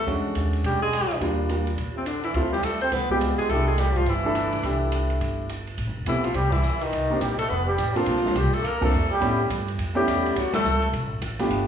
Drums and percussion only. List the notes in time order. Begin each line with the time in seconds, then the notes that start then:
0.07 kick, ride
0.35 hi-hat pedal, ride
0.53 ride
0.64 kick, ride
0.93 hi-hat pedal, ride
1.11 ride
1.21 kick, ride
1.49 hi-hat pedal, ride
1.67 ride
1.77 kick, ride
2.06 hi-hat pedal, ride
2.23 ride
2.34 kick, ride
2.52 snare
2.63 hi-hat pedal, ride
2.81 ride
2.92 kick, snare, ride
3.10 kick
3.21 hi-hat pedal, ride
3.39 ride
3.49 kick, ride
3.78 snare, hi-hat pedal, ride
3.96 kick, ride
4.06 kick, ride
4.35 hi-hat pedal, ride
4.53 ride
4.63 kick, ride
4.92 hi-hat pedal, ride
5.10 ride
5.21 kick, ride
5.49 hi-hat pedal, ride
5.67 ride
5.78 kick, ride
6.06 kick, hi-hat pedal, ride
6.24 ride
6.34 kick, ride
6.52 kick, crash
6.63 hi-hat pedal
6.81 ride
6.92 kick, ride
7.21 kick, hi-hat pedal, ride
7.39 ride
7.49 kick
7.78 kick, hi-hat pedal, ride
7.96 ride
8.06 kick, ride
8.16 snare
8.26 snare
8.35 kick, hi-hat pedal, ride
8.53 ride
8.64 kick, ride
8.82 kick, crash
8.93 hi-hat pedal
9.21 kick, ride
9.50 kick, hi-hat pedal, ride
9.68 ride
9.78 kick, ride
10.07 kick, hi-hat pedal, ride
10.26 ride
10.36 kick, ride
10.53 snare, ride
10.65 hi-hat pedal
10.82 ride
10.93 kick, ride
11.21 kick, hi-hat pedal, ride
11.39 snare, ride
11.50 kick, ride